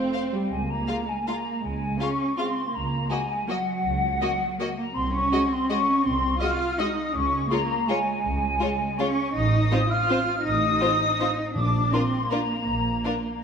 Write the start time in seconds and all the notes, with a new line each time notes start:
Already playing: A3 C4 F4
0.13 C5 F5
0.33 G3 G5
0.50 C#2 G#3 G#5
0.68 A#3 A#5
0.87 G#3 F4 F5
1.08 G#3 G#5
1.27 G#3 A#3 F4 F5 A#5
1.63 C#2 G#3 G#5
2.00 G#3 C#4 F4 F5 C#6
2.38 G#3 C4 F4 F5 C6
2.74 C#2 A#3 A#5
3.10 G#3 A#3 F#4 D#5 G#5
3.47 F#3 A#3 F#4 D#5 F#5
3.85 C#2
4.20 A#3 F#4 D#5
4.59 A#3 F#4 D#5
4.77 A#3 A#5
4.95 C2 C4 C6
5.12 C#4 C#6
5.32 G#3 F#4 D#5
5.50 C4 C6
5.69 G#3 C#4 F#4 D#5 C#6
6.04 C2 C4 C6
6.40 G#3 F4 F#4 D#5 F6
6.78 G#3 D#4 F#4 D#5 D#6
7.14 C#2 C#4 C#6
7.50 G#3 A#3 F4 C#5 A#5
7.88 G#3 F4 C#5 G#5
8.25 C#2
8.60 G#3 F4 C#5
8.98 G#3 C#4 F4 C#5 C#6
9.35 A1 D#4 D#6
9.72 C4 F4 C5
9.90 F4 F6
10.09 C4 F4 C5
10.45 A1 D#4 D#6
10.81 C4 F4 C5
11.20 C4 F4 C5
11.55 A#1 A#2 D4 D6
11.93 C4 D4 F4 A#4 C6
12.30 A#3 D4 F4 A#4 A#5
12.67 A#1
13.05 D4 F4 A#4